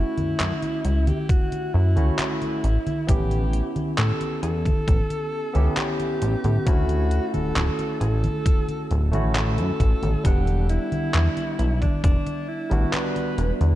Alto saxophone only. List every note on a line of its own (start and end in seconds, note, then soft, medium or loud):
0.00 1.09 E4 loud
1.07 1.31 G4 medium
1.29 1.76 F#4 loud
1.74 2.18 E4 medium
2.19 3.10 E4 medium
3.09 3.71 G4 loud
3.98 4.40 A4 loud
4.43 5.78 A4 loud
5.77 6.68 G4 medium
6.67 7.33 F#4 loud
7.34 7.97 A4 loud
8.01 9.04 A4 loud
9.35 10.26 A4 loud
10.25 10.69 G4 loud
10.70 11.78 E4 loud
11.82 12.02 D4 medium
12.04 12.50 D4 loud
12.49 12.94 E4 medium
12.93 13.56 B4 loud